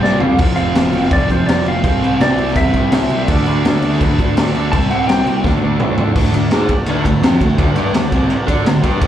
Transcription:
0.01 picked electric bass C2, distorted electric guitar C3 G3, electric slide guitar D5, snare
0.05 distorted electric guitar C4, transistor combo organ E4 G4 D5
0.19 picked electric bass C2, distorted electric guitar C3 G3 C4, electric slide guitar F5, floor tom
0.38 picked electric bass F1, distorted electric guitar F2 C3 F3, transistor combo organ F4 A4 C5, kick, crash
0.56 picked electric bass F1, distorted electric guitar F2 C3 F3, electric slide guitar F5, crash
0.73 picked electric bass F1, distorted electric guitar F2 C3 F3, transistor combo organ F4 A4 C5, snare, crash
0.93 picked electric bass F1, distorted electric guitar F2 C3 F3, crash
1.03 snare
1.10 picked electric bass F1, distorted electric guitar F2 C3, transistor combo organ C5, electric slide guitar D5, kick, crash
1.14 distorted electric guitar F3, transistor combo organ F4 A4
1.29 picked electric bass F1, distorted electric guitar F2 C3 F3, electric slide guitar C5, kick, crash
1.46 picked electric bass F1, distorted electric guitar F2, transistor combo organ F4 A4 C5, electric slide guitar D5, snare, crash
1.50 distorted electric guitar C3 F3
1.64 picked electric bass F1, distorted electric guitar F2, electric slide guitar F5, crash
1.69 distorted electric guitar C3 F3
1.82 picked electric bass C2, distorted electric guitar C3 G3 C4, transistor combo organ C4 G4 C5, kick, crash
2.01 picked electric bass C2, distorted electric guitar C3 G3 C4, crash
2.19 picked electric bass C2, distorted electric guitar C3 G3 C4, transistor combo organ E4 G4 C5, electric slide guitar D5, snare, crash
2.36 picked electric bass C2, distorted electric guitar C3 G3, crash
2.41 distorted electric guitar C4
2.48 snare
2.53 picked electric bass E2, transistor combo organ E4 G4 B4, electric slide guitar E5, kick, crash
2.57 distorted electric guitar C3 G3 C4
2.73 picked electric bass C2, distorted electric guitar C3 G3 C4, kick, crash
2.91 picked electric bass C2, distorted electric guitar C3 G3 C4, transistor combo organ E4 G4 C5, snare, crash
3.08 picked electric bass C2, distorted electric guitar C3, crash
3.13 distorted electric guitar G3 C4
3.27 picked electric bass D2, distorted electric guitar D3 A3 D4, transistor combo organ F#4 A4 D5, kick, crash
3.46 picked electric bass D2, distorted electric guitar D3 A3 D4, crash
3.60 transistor combo organ F#4 A4 D5
3.65 picked electric bass D2, distorted electric guitar D3 A3 D4, snare, crash
3.82 picked electric bass D2, distorted electric guitar D3 A3, crash
3.86 distorted electric guitar D4
3.94 transistor combo organ B4, snare
3.98 picked electric bass D2, transistor combo organ F#4 A4, kick, crash
4.03 distorted electric guitar D3 A3 D4
4.19 picked electric bass D2, distorted electric guitar D3 A3 D4, kick, crash
4.35 picked electric bass D2, distorted electric guitar D3 A3, transistor combo organ F#4 A4 D5, snare, crash
4.40 distorted electric guitar D4
4.53 picked electric bass D2, distorted electric guitar D3 A3 D4, crash
4.72 picked electric bass C2, distorted electric guitar C3 G3 C4, transistor combo organ G4 C5 E5, electric slide guitar A5, kick, crash
4.90 picked electric bass C2, distorted electric guitar C3 G3 C4, electric slide guitar F#5, crash
5.06 picked electric bass C2, distorted electric guitar C3 G3, transistor combo organ G4 C5 D5, electric slide guitar G5, crash
5.10 distorted electric guitar C4, snare
5.24 picked electric bass C2, distorted electric guitar C3 G3 C4, crash
5.43 picked electric bass D2, distorted electric guitar D3 A3 D4, transistor combo organ F#4 A4 D5, kick, snare
5.61 picked electric bass D2, distorted electric guitar D3 A3 D4
5.75 picked electric bass D2, transistor combo organ F#4 A4 E5
5.79 distorted electric guitar D3 A3 D4, mid tom
5.97 picked electric bass D2, distorted electric guitar D3 A3 D4, floor tom
6.15 picked electric bass D2, distorted electric guitar D3 A3 D4, transistor combo organ F#4 A4 D5, kick, crash
6.32 picked electric bass D2, distorted electric guitar D3, ride
6.36 distorted electric guitar A3
6.50 picked electric bass G#2, distorted electric guitar G#3 D#4 G#4, transistor combo organ F#4 A4 D5, snare, ride
6.68 muted picked electric bass stroke, muted distorted electric guitar stroke, kick, ride
6.86 picked electric bass D2, distorted electric guitar D3 A3, transistor combo organ F#4 A4 B4, ride
6.90 distorted electric guitar D4
7.05 picked electric bass D2, distorted electric guitar D3 A3, kick, ride
7.20 picked electric bass F2, distorted electric guitar F3, transistor combo organ F#4 A4 C5, ride
7.24 distorted electric guitar C4 F4, snare
7.41 picked electric bass D2, distorted electric guitar D3 A3, kick, ride
7.58 picked electric bass D2, distorted electric guitar D3 A3 D4, transistor combo organ F#4 A4 D5, kick, ride
7.74 picked electric bass G2, distorted electric guitar G3 D4 G4, ride
7.92 picked electric bass D2, distorted electric guitar D3 A3, transistor combo organ A4 D5, snare, ride
7.97 transistor combo organ F#4
8.12 picked electric bass C2, distorted electric guitar C3 G3 C4, kick, ride
8.28 transistor combo organ F#4 A4 D5, muted picked electric bass stroke, muted distorted electric guitar stroke, ride
8.46 picked electric bass D3, distorted electric guitar D4 A4 D5, kick, ride
8.64 picked electric bass D2, distorted electric guitar D3 A3, snare, ride
8.68 transistor combo organ F#4 A4 C5
8.82 picked electric bass G2, distorted electric guitar G3 D4 G4, kick, ride
9.00 picked electric bass G1, distorted electric guitar G2 D3 G3, kick, ride
9.04 transistor combo organ D4

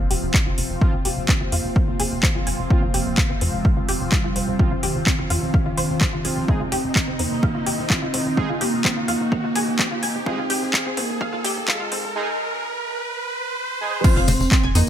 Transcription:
Already playing: analog synth pad C3 F3 C4 F4, analog synth lead A#3, riser
0.11 analog synth bass F1, synth pluck G4, open hi-hat
0.23 analog synth bass F1
0.34 analog synth lead C4, synth pluck F4, kick, clap
0.46 analog synth bass F1, synth pluck F4
0.58 analog synth bass F1, synth pluck C4, open hi-hat
0.70 analog synth bass F1
0.81 analog polysynth F3 C4 F4, synth pluck F5, kick
0.93 analog synth bass F1, synth pluck F4
1.05 analog synth bass F1, analog synth lead A#3, synth pluck G4, open hi-hat
1.17 analog synth bass F1
1.29 synth pluck C4, kick, clap
1.41 analog synth bass F1, synth pluck F4
1.52 analog synth bass F2, synth pluck F4, open hi-hat
1.64 analog synth bass F1
1.76 synth pluck F5, kick
1.88 analog synth bass F1, synth pluck F4
2.00 analog synth bass F1, synth pluck G#4, open hi-hat
2.12 analog synth bass F1
2.23 synth pluck C4, kick, clap
2.35 analog synth bass F1, synth pluck F4
2.47 analog synth bass F1, synth pluck G#5, open hi-hat
2.59 analog synth bass F1
2.70 analog polysynth F3 C4 F4, analog synth lead A#3, synth pluck F4, kick
2.82 analog synth bass F1, synth pluck F4
2.94 analog synth bass F1, synth pluck G4, open hi-hat
3.06 analog synth bass F1
3.18 synth pluck F5, kick, clap
3.30 analog synth bass F1, synth pluck C4
3.41 analog synth bass F2, analog synth lead G#3, synth pluck C4, open hi-hat
3.53 analog synth bass F1
3.65 synth pluck F5, kick
3.77 analog synth bass F1, synth pluck F4
3.89 analog synth bass F1, synth pluck G4, open hi-hat
4.01 analog synth bass F1
4.12 analog synth lead G3, synth pluck F4, kick, clap
4.24 analog synth bass F1, synth pluck F4
4.36 analog synth bass F1, synth pluck C4, open hi-hat
4.48 analog synth bass F1
4.59 analog polysynth F3 C4 F4, synth pluck F5, kick
4.71 analog synth bass F1, synth pluck F4
4.83 analog synth bass F1, analog synth lead D#3, synth pluck G4, open hi-hat
4.95 analog synth bass F1
5.07 synth pluck C4, kick, clap
5.19 analog synth bass F1, synth pluck F4
5.30 analog synth bass F2, synth pluck F4, open hi-hat
5.42 analog synth bass F1
5.54 synth pluck F5, kick
5.66 analog synth bass F1, synth pluck F4
5.78 analog synth bass F1, synth pluck C5, open hi-hat
5.89 analog synth bass F1
6.01 synth pluck C5, kick, clap
6.13 analog synth bass F1, synth pluck F4
6.25 analog synth bass F1, analog polysynth F3 C4 F4, synth pluck G#4, open hi-hat
6.37 analog synth bass F1
6.48 analog synth pad D#3 D#4, analog polysynth G#3 D#4 G#4, analog synth lead C4, synth pluck F4, kick
6.60 analog synth bass F1, synth pluck F4
6.72 analog synth bass F1, synth pluck G4, open hi-hat, low conga
6.84 analog synth bass F1
6.96 synth pluck F5, kick, clap
7.08 analog synth bass F1, synth pluck C4
7.19 analog synth bass F2, analog synth lead A#3, synth pluck C4, open hi-hat
7.31 analog synth bass F1
7.43 synth pluck F5, kick, low conga
7.55 analog synth bass F1, synth pluck F4
7.67 analog synth bass F1, synth pluck G4, open hi-hat
7.78 analog synth bass F1
7.90 analog synth lead C4, synth pluck F4, kick, clap
8.02 analog synth bass F1, synth pluck F4
8.14 analog synth bass F1, synth pluck C4, open hi-hat, low conga
8.26 analog synth bass F1
8.37 analog polysynth G#3 D#4 G#4, synth pluck F5, kick
8.49 analog synth bass F1, synth pluck F4
8.61 analog synth bass F1, analog synth lead A#3, synth pluck G4, open hi-hat
8.73 analog synth bass F1
8.85 synth pluck C4, kick, clap, low conga
8.97 analog synth bass F1, synth pluck F4
9.08 analog synth bass F2, synth pluck F4, open hi-hat
9.20 analog synth bass F1
9.32 synth pluck F5, kick
9.44 analog synth bass F1, synth pluck F4
9.56 analog synth bass F1, synth pluck G#4, open hi-hat, low conga
9.67 analog synth bass F1
9.79 synth pluck C4, kick, clap
9.91 analog synth bass F1, synth pluck F4
10.03 analog synth bass F1, synth pluck G#5, open hi-hat
10.15 analog synth bass F1
10.26 analog polysynth G#3 D#4 G#4, analog synth lead C4, synth pluck F4, kick, low conga
10.38 analog synth bass F1, synth pluck F4
10.50 analog synth bass F1, synth pluck G4, open hi-hat
10.62 analog synth bass F1
10.74 synth pluck F5, kick, clap
10.86 analog synth bass F1, synth pluck C4
10.97 analog synth bass F2, analog synth lead A#3, synth pluck C4, open hi-hat, low conga
11.09 analog synth bass F1
11.21 synth pluck F5, kick
11.33 analog synth bass F1, synth pluck F4
11.44 analog synth bass F1, synth pluck G4, open hi-hat
11.56 analog synth bass F1
11.68 analog synth lead G#3, synth pluck F4, kick, clap, low conga
11.80 analog synth bass F1, synth pluck F4
11.92 analog synth bass F1, synth pluck C4, open hi-hat
12.04 analog synth bass F1
12.15 analog polysynth G#3 D#4 G#4
13.81 analog polysynth G#3 D#4 G#4
14.04 analog polysynth F3 C4 F4, digital synth lead C4, analog synth lead C4, synth pluck F4 F5, kick, tambourine, crash
14.16 analog synth bass F1, synth pluck F4 F5
14.28 analog synth bass F1, synth pluck C4 C5, open hi-hat, tambourine, low conga
14.40 analog synth bass F1, tambourine
14.52 synth pluck C4 C5, kick, clap, tambourine
14.63 analog synth bass F1, synth pluck G#5 G#6
14.75 analog synth bass F2, digital synth lead A#3, analog synth lead A#3, synth pluck D#4 D#5, open hi-hat, tambourine

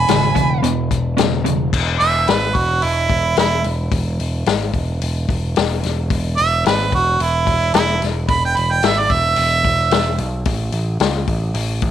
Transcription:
Already playing: lead electric guitar G#5, harmonica B5
0.08 picked electric bass G#1, overdriven electric guitar E2 C#3, snare, closed hi-hat
0.35 picked electric bass E1, overdriven electric guitar E2 C#3, kick, closed hi-hat
0.62 picked electric bass E1, overdriven electric guitar E2 B2, closed hi-hat
0.91 picked electric bass E1, kick, closed hi-hat
1.17 picked electric bass E1, overdriven electric guitar E2 C#3, snare, closed hi-hat
1.44 picked electric bass E1, overdriven electric guitar E2 C#3, closed hi-hat
1.73 picked electric bass E1, kick, crash
2.00 picked electric bass E1, harmonica E5, open hi-hat
2.28 picked electric bass G#1, harmonica B4, snare, open hi-hat
2.55 picked electric bass E1, harmonica F#4, kick, open hi-hat
2.82 picked electric bass E1, harmonica E4, open hi-hat
3.10 picked electric bass E1, kick, open hi-hat
3.37 picked electric bass E1, harmonica E4, snare, open hi-hat
3.64 picked electric bass E1, open hi-hat
3.92 picked electric bass E1, kick, open hi-hat
4.19 picked electric bass E1, open hi-hat
4.46 picked electric bass G#1, snare, open hi-hat
4.74 picked electric bass E1, kick, open hi-hat
5.02 picked electric bass E1, open hi-hat
5.28 picked electric bass E1, kick, open hi-hat
5.56 picked electric bass E1, snare, open hi-hat
5.83 picked electric bass E1, snare, open hi-hat
6.10 picked electric bass E1, kick, open hi-hat
6.37 picked electric bass E1, harmonica E5, open hi-hat
6.66 picked electric bass G#1, harmonica B4, snare, open hi-hat
6.92 picked electric bass E1, harmonica F#4, kick, open hi-hat
7.19 picked electric bass E1, harmonica E4, open hi-hat
7.47 picked electric bass E1, kick, open hi-hat
7.74 picked electric bass E1, harmonica E4, snare, open hi-hat
8.02 picked electric bass E1, snare, open hi-hat
8.29 picked electric bass E1, harmonica B5, kick, open hi-hat
8.45 harmonica G5
8.57 picked electric bass E1, harmonica B5, open hi-hat
8.72 harmonica G5
8.83 picked electric bass G#1, harmonica E5, snare, open hi-hat
8.99 harmonica D5
9.10 picked electric bass E1, harmonica E5, kick, open hi-hat
9.36 picked electric bass E1, open hi-hat
9.65 picked electric bass E1, kick, open hi-hat
9.91 picked electric bass E1, snare, open hi-hat
10.18 picked electric bass B1, open hi-hat
10.45 picked electric bass A1, kick, open hi-hat
10.72 picked electric bass A1, open hi-hat
11.00 picked electric bass C#2, snare, open hi-hat
11.27 picked electric bass A1, kick, open hi-hat
11.54 picked electric bass A1, open hi-hat
11.82 picked electric bass A1, kick, open hi-hat

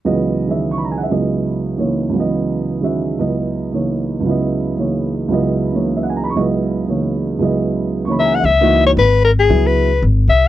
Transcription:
0.05 upright piano C#2 C#3 E3 F#3 B3 D#5
0.47 upright piano D#3 G#3 C#4 F#4 E5
0.71 upright piano C#6
0.78 upright piano B5
0.84 upright piano A#5
0.92 upright piano G#5
0.98 upright piano F#5
1.03 upright piano E5
1.10 upright piano C#2 C#3 F#3 B3 E4 D#5
1.77 upright piano C#3 E3 A#3 D#4 C#5
2.09 upright piano C#2 C#3
2.14 upright piano F#3 B3
2.18 upright piano E3 D#5
2.81 upright piano D#3 G#3 C#4 F#4 E5
3.19 upright piano C#2 C#3 F#3 B3 E4 D#5
3.71 upright piano C#3 E3 A#3 D#4 C#5
4.20 upright piano C#2 C#3 F#3
4.26 upright piano B3 E4
4.31 upright piano D#5
4.77 upright piano C#3 E3 A#3 D#4 C#5
5.28 upright piano C#2 C#3 F#3 B3
5.32 upright piano E4 D#5
5.72 upright piano C#3 E3 A#3 D#4 C#5
5.97 upright piano E5
6.03 upright piano F#5
6.10 upright piano G#5
6.16 upright piano A#5
6.24 upright piano B5
6.29 upright piano C#6
6.36 upright piano C#2 C#3 F#3 B3 E4 D#5
6.87 upright piano C#3 E3 A#3 D#4 C#5
7.39 upright piano C#2 C#3 F#3 B3 E4
7.43 upright piano D#5
8.05 upright piano C#3 E3 A#3 D#4 C#6
8.09 upright piano C#5 B5
8.20 soprano saxophone E5, upright piano A#5
8.25 upright piano G#5
8.32 upright piano F#5, soprano saxophone F#5
8.40 upright piano E5
8.44 upright bass C#2, soprano saxophone E5
8.61 upright piano E3 A#3 D#4 F#4
8.87 soprano saxophone C#5
8.97 upright bass G#1, soprano saxophone B4
9.25 soprano saxophone A#4
9.40 soprano saxophone G#4
9.49 upright bass C#2, upright piano F#3 B3 E4 G#4
9.67 soprano saxophone B4
10.02 upright bass G#1
10.28 upright bass C2, soprano saxophone E5

